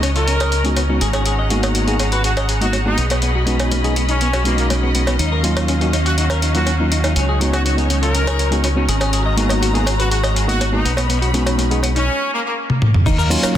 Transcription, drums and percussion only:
0.03 closed hi-hat medium
0.03 cowbell medium
0.16 closed hi-hat soft
0.28 closed hi-hat medium
0.40 closed hi-hat soft
0.40 cowbell medium
0.52 closed hi-hat medium
0.65 closed hi-hat soft
0.76 closed hi-hat medium
0.76 cowbell medium
1.01 closed hi-hat medium
1.13 closed hi-hat soft
1.13 cowbell medium
1.26 closed hi-hat medium
1.50 closed hi-hat medium
1.63 closed hi-hat soft
1.63 cowbell medium
1.75 closed hi-hat medium
1.88 closed hi-hat soft
1.99 closed hi-hat medium
1.99 cowbell medium
2.12 closed hi-hat soft
2.24 closed hi-hat medium
2.37 closed hi-hat soft
2.37 cowbell medium
2.49 closed hi-hat medium
2.62 closed hi-hat soft
2.73 closed hi-hat medium
2.73 cowbell medium
2.98 closed hi-hat medium
3.10 closed hi-hat soft
3.10 cowbell medium
3.22 closed hi-hat medium
3.47 closed hi-hat medium
3.60 closed hi-hat soft
3.60 cowbell medium
3.72 closed hi-hat medium
3.84 closed hi-hat soft
3.96 closed hi-hat medium
4.09 closed hi-hat soft
4.21 closed hi-hat medium
4.33 closed hi-hat soft
4.33 cowbell medium
4.45 closed hi-hat medium
4.58 closed hi-hat soft
4.70 closed hi-hat medium
4.70 cowbell medium
4.95 closed hi-hat medium
5.07 closed hi-hat soft
5.07 cowbell medium
5.19 closed hi-hat medium
5.44 closed hi-hat medium
5.57 closed hi-hat soft
5.57 cowbell medium
5.68 closed hi-hat medium
5.81 closed hi-hat soft
5.93 closed hi-hat medium
5.93 cowbell medium
6.06 closed hi-hat soft
6.18 closed hi-hat medium
6.30 closed hi-hat soft
6.30 cowbell medium
6.42 closed hi-hat medium
6.55 closed hi-hat soft
6.66 closed hi-hat medium
6.66 cowbell medium
6.92 closed hi-hat medium
7.04 closed hi-hat soft
7.04 cowbell medium
7.16 closed hi-hat medium
7.41 closed hi-hat medium
7.53 closed hi-hat soft
7.53 cowbell medium
7.66 closed hi-hat medium
7.78 closed hi-hat soft
7.90 closed hi-hat medium
8.03 closed hi-hat soft
8.15 closed hi-hat medium
8.27 closed hi-hat soft
8.27 cowbell medium
8.39 closed hi-hat medium
8.52 closed hi-hat soft
8.64 closed hi-hat medium
8.64 cowbell medium
8.89 closed hi-hat medium
9.01 closed hi-hat soft
9.01 cowbell medium
9.13 closed hi-hat medium
9.38 closed hi-hat medium
9.49 closed hi-hat soft
9.49 cowbell medium
9.63 closed hi-hat medium
9.75 closed hi-hat soft
9.87 closed hi-hat medium
9.87 cowbell medium
10.00 closed hi-hat soft
10.11 closed hi-hat medium
10.24 closed hi-hat soft
10.24 cowbell medium
10.36 closed hi-hat medium
10.49 closed hi-hat medium
10.61 closed hi-hat medium
10.61 cowbell medium
10.86 closed hi-hat medium
10.97 closed hi-hat soft
10.97 cowbell medium
11.10 closed hi-hat medium
11.22 closed hi-hat soft
11.34 closed hi-hat medium
11.46 closed hi-hat soft
11.46 cowbell medium
11.59 closed hi-hat medium
11.71 closed hi-hat soft
11.83 closed hi-hat medium
11.83 cowbell soft
11.96 closed hi-hat soft
12.70 high tom soft
12.82 mid tom medium
12.94 mid tom medium
13.06 kick loud
13.06 closed hi-hat medium
13.06 crash loud
13.06 shaker soft
13.19 shaker soft
13.31 open hi-hat loud
13.31 shaker medium
13.43 closed hi-hat medium
13.43 cowbell medium
13.43 shaker soft

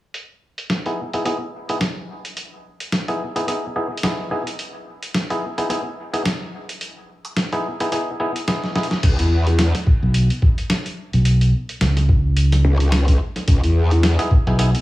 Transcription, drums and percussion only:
0.14 closed hi-hat medium
0.58 closed hi-hat medium
0.70 snare loud
0.70 closed hi-hat medium
0.86 closed hi-hat soft
1.13 closed hi-hat medium
1.25 closed hi-hat medium
1.69 closed hi-hat medium
1.81 snare loud
1.81 closed hi-hat medium
2.25 closed hi-hat medium
2.37 closed hi-hat medium
2.80 closed hi-hat medium
2.92 snare loud
2.92 closed hi-hat medium
3.08 closed hi-hat soft
3.36 closed hi-hat medium
3.48 closed hi-hat medium
3.97 closed hi-hat medium
4.03 snare loud
4.03 closed hi-hat medium
4.47 closed hi-hat medium
4.59 closed hi-hat medium
5.03 closed hi-hat medium
5.14 snare loud
5.14 closed hi-hat medium
5.30 closed hi-hat soft
5.58 closed hi-hat medium
5.70 closed hi-hat medium
6.14 closed hi-hat medium
6.25 snare loud
6.25 closed hi-hat medium
6.69 closed hi-hat medium
6.81 closed hi-hat medium
7.25 closed hi-hat medium
7.37 snare loud
7.37 closed hi-hat medium
7.52 closed hi-hat soft
7.80 closed hi-hat medium
7.92 closed hi-hat medium
8.36 closed hi-hat medium
8.48 snare loud
8.48 closed hi-hat medium
8.64 snare soft
8.76 snare medium
8.83 closed hi-hat soft
8.91 snare medium
9.03 kick loud
9.03 closed hi-hat medium
9.03 crash medium
9.19 closed hi-hat medium
9.47 closed hi-hat soft
9.59 snare loud
9.59 closed hi-hat medium
9.75 snare medium
9.75 closed hi-hat medium
9.87 kick loud
10.14 closed hi-hat medium
10.30 closed hi-hat soft
10.42 kick loud
10.58 closed hi-hat soft
10.70 snare loud
10.70 closed hi-hat medium
10.86 closed hi-hat soft
11.13 closed hi-hat soft
11.25 closed hi-hat medium
11.41 closed hi-hat medium
11.69 closed hi-hat soft
11.81 snare loud
11.81 closed hi-hat medium
11.97 snare medium
11.97 closed hi-hat medium
12.09 kick loud
12.37 closed hi-hat medium
12.52 snare soft
12.52 closed hi-hat medium
12.80 closed hi-hat soft
12.92 snare loud
12.92 closed hi-hat medium
13.08 kick medium
13.08 closed hi-hat medium
13.36 snare soft
13.36 closed hi-hat soft
13.48 kick loud
13.48 closed hi-hat medium
13.64 closed hi-hat soft
13.91 closed hi-hat soft
14.03 snare loud
14.03 closed hi-hat medium
14.19 snare soft
14.19 closed hi-hat medium
14.31 kick loud
14.59 closed hi-hat medium
14.75 closed hi-hat medium

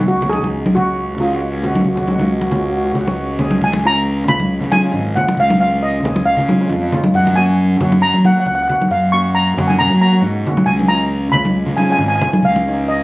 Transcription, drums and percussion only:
0.22 low conga medium
0.33 high conga medium
0.44 high conga medium
0.66 high conga medium
0.76 low conga medium
1.64 low conga medium
1.75 high conga medium
1.97 low conga medium
2.08 high conga medium
2.19 high conga medium
2.41 high conga medium
2.51 low conga medium
3.07 high conga medium
3.39 low conga medium
3.51 high conga medium
3.73 high conga medium
4.28 low conga medium
4.40 high conga medium
4.72 high conga medium
5.17 low conga medium
5.28 high conga medium
5.50 high conga medium
6.05 low conga medium
6.16 high conga medium
6.49 high conga medium
6.92 low conga medium
7.04 high conga medium
7.27 high conga medium
7.80 low conga medium
7.92 high conga medium
8.25 high conga medium
8.69 low conga medium
8.81 high conga medium
9.58 low conga medium
9.70 high conga medium
9.81 low conga medium
10.47 low conga medium
10.57 high conga medium
10.79 high conga medium
11.33 low conga medium
11.45 high conga medium
11.78 high conga medium
12.21 low conga medium
12.33 high conga medium
12.56 high conga medium

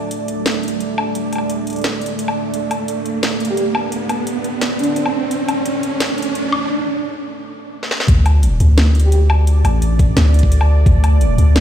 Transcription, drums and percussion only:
0.11 closed hi-hat medium
0.28 closed hi-hat medium
0.46 snare loud
0.46 closed hi-hat medium
0.63 closed hi-hat soft
0.68 closed hi-hat medium
0.80 closed hi-hat medium
0.98 low woodblock medium
1.15 closed hi-hat medium
1.33 closed hi-hat medium
1.33 low woodblock soft
1.35 low woodblock soft
1.38 low woodblock soft
1.50 closed hi-hat medium
1.67 closed hi-hat medium
1.70 closed hi-hat medium
1.73 closed hi-hat soft
1.76 closed hi-hat soft
1.78 closed hi-hat soft
1.81 snare loud
1.81 closed hi-hat soft
1.84 closed hi-hat medium
2.02 closed hi-hat soft
2.06 closed hi-hat medium
2.19 closed hi-hat medium
2.28 low woodblock medium
2.54 closed hi-hat medium
2.71 closed hi-hat medium
2.71 low woodblock soft
2.88 closed hi-hat medium
3.06 closed hi-hat medium
3.23 snare loud
3.23 closed hi-hat medium
3.40 closed hi-hat soft
3.45 closed hi-hat medium
3.57 closed hi-hat medium
3.75 low woodblock medium
3.92 closed hi-hat medium
4.09 closed hi-hat medium
4.09 low woodblock soft
4.27 closed hi-hat medium
4.44 closed hi-hat medium
4.61 snare loud
4.61 closed hi-hat medium
4.79 closed hi-hat soft
4.83 closed hi-hat medium
4.96 closed hi-hat medium
5.06 low woodblock medium
5.31 closed hi-hat medium
5.48 closed hi-hat medium
5.48 low woodblock medium
5.66 closed hi-hat medium
5.83 closed hi-hat medium
6.00 snare loud
6.00 closed hi-hat medium
6.18 closed hi-hat soft
6.22 closed hi-hat medium
6.35 closed hi-hat medium
6.52 low woodblock medium
7.83 snare medium
7.91 snare medium
8.00 snare medium
8.08 kick loud
8.08 closed hi-hat medium
8.26 closed hi-hat medium
8.26 low woodblock medium
8.43 closed hi-hat medium
8.60 closed hi-hat medium
8.78 snare loud
8.78 closed hi-hat medium
8.95 closed hi-hat soft
8.99 closed hi-hat medium
9.12 closed hi-hat medium
9.30 low woodblock medium
9.47 closed hi-hat medium
9.65 closed hi-hat medium
9.65 low woodblock medium
9.82 closed hi-hat medium
9.99 kick loud
9.99 closed hi-hat medium
10.17 snare loud
10.17 closed hi-hat medium
10.34 closed hi-hat medium
10.39 closed hi-hat medium
10.43 kick medium
10.52 closed hi-hat medium
10.61 low woodblock medium
10.86 kick loud
10.86 closed hi-hat medium
11.04 closed hi-hat medium
11.04 low woodblock medium
11.21 closed hi-hat medium
11.38 closed hi-hat medium
11.56 snare loud
11.56 closed hi-hat medium

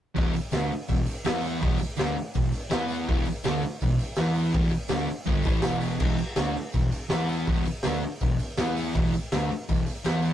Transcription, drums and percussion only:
0.16 kick loud
0.16 open hi-hat medium
0.16 tambourine soft
0.33 open hi-hat medium
0.33 tambourine medium
0.51 snare loud
0.51 open hi-hat medium
0.51 tambourine medium
0.71 open hi-hat medium
0.88 kick medium
0.88 open hi-hat medium
0.88 tambourine medium
1.06 open hi-hat medium
1.06 tambourine medium
1.24 snare loud
1.24 open hi-hat medium
1.24 tambourine medium
1.41 open hi-hat medium
1.41 tambourine medium
1.60 kick loud
1.60 open hi-hat medium
1.60 tambourine soft
1.78 tambourine medium
1.82 open hi-hat medium
1.96 snare loud
1.96 open hi-hat medium
1.96 tambourine medium
2.18 open hi-hat medium
2.34 kick medium
2.34 open hi-hat medium
2.34 tambourine medium
2.52 open hi-hat medium
2.52 tambourine medium
2.71 snare loud
2.71 open hi-hat medium
2.71 tambourine medium
2.88 open hi-hat medium
2.88 tambourine medium
3.07 kick loud
3.07 open hi-hat medium
3.07 tambourine soft
3.25 open hi-hat medium
3.25 tambourine medium
3.44 snare loud
3.44 open hi-hat medium
3.44 tambourine medium
3.65 open hi-hat medium
3.81 kick medium
3.81 open hi-hat medium
3.81 tambourine medium
3.99 open hi-hat medium
3.99 tambourine medium
4.16 snare loud
4.16 open hi-hat medium
4.16 tambourine medium
4.34 open hi-hat medium
4.34 tambourine medium
4.54 kick loud
4.54 open hi-hat medium
4.69 tambourine medium
4.73 open hi-hat medium
4.88 snare loud
4.88 open hi-hat medium
4.88 tambourine medium
5.07 open hi-hat medium
5.07 tambourine soft
5.24 kick loud
5.24 open hi-hat medium
5.24 tambourine medium
5.43 kick loud
5.43 open hi-hat medium
5.43 tambourine medium
5.62 snare loud
5.62 open hi-hat medium
5.62 tambourine loud
5.81 open hi-hat medium
5.81 tambourine medium
6.00 kick loud
6.00 crash loud
6.18 open hi-hat medium
6.18 tambourine medium
6.36 snare loud
6.36 open hi-hat medium
6.36 tambourine medium
6.56 open hi-hat medium
6.72 kick medium
6.72 open hi-hat medium
6.72 tambourine medium
6.92 open hi-hat medium
6.92 tambourine medium
7.10 snare loud
7.10 open hi-hat medium
7.10 tambourine loud
7.29 open hi-hat medium
7.29 tambourine medium
7.47 kick loud
7.47 open hi-hat medium
7.47 tambourine soft
7.65 open hi-hat medium
7.65 tambourine medium
7.83 snare loud
7.83 open hi-hat medium
7.83 tambourine medium
8.02 open hi-hat medium
8.21 kick medium
8.21 open hi-hat medium
8.21 tambourine medium
8.39 open hi-hat medium
8.39 tambourine medium
8.57 snare loud
8.57 open hi-hat medium
8.57 tambourine loud
8.76 open hi-hat medium
8.76 tambourine medium
8.95 kick loud
8.95 open hi-hat medium
8.95 tambourine soft
9.14 open hi-hat medium
9.14 tambourine medium
9.32 snare loud
9.32 open hi-hat medium
9.32 tambourine medium
9.51 open hi-hat medium
9.69 kick medium
9.69 open hi-hat medium
9.69 tambourine medium
9.86 open hi-hat medium
9.86 tambourine medium
10.05 snare loud
10.05 open hi-hat medium
10.05 tambourine loud
10.22 open hi-hat medium
10.22 tambourine medium

